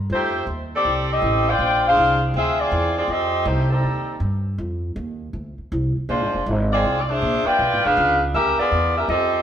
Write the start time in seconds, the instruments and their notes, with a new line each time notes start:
0.10 upright bass F2, saxophone section A3 D#4 G4 C5
0.47 upright bass D#2
0.75 saxophone section C4 G4 A4 D5
0.85 upright bass C2
1.12 saxophone section C4 G4 A4 D#5
1.22 upright bass A1
1.50 saxophone section F4 C5 D5 G5
1.59 upright bass A#1
1.87 saxophone section D4 G#4 C5 F5
1.97 upright bass C2
2.34 upright bass D2, saxophone section C4 F4 G#4 E5
2.60 saxophone section C4 F4 G#4 D5
2.72 upright bass E2
2.98 saxophone section C4 F4 G#4 D5
3.08 upright bass F2, saxophone section C4 G4 A4 D#5
3.45 upright bass C2, saxophone section A3 D#4 G4 C5
3.71 saxophone section G3 C4 D#4 A4
3.83 upright bass D#2
4.20 upright bass G2
4.58 upright bass F2
4.96 upright bass D#2
5.33 upright bass D2
5.58 muted upright bass stroke
5.72 upright bass C2
5.96 muted upright bass stroke
6.09 upright bass A#1, saxophone section G#3 D4 F4 C5
6.21 upright bass G#1
6.34 upright bass F1
6.46 upright bass G#1
6.73 saxophone section C4 F4 G#4 D5
6.84 upright bass C2
6.99 saxophone section D5
7.10 saxophone section D4 G#4 C5 E5
7.22 upright bass A#1
7.46 saxophone section F4 B4 D5 G5, muted upright bass stroke
7.59 upright bass B1
7.72 upright bass G#1
7.84 upright bass F1, saxophone section D4 G#4 B4 F5
7.97 upright bass C#2
8.34 upright bass D2, saxophone section C#4 G4 A#4 E5
8.59 saxophone section B3 F4 G#4 D5, muted upright bass stroke
8.71 upright bass E2
8.98 saxophone section C#4 G4 A#4 E5
9.08 upright bass F2, saxophone section C4 G4 A4 D#5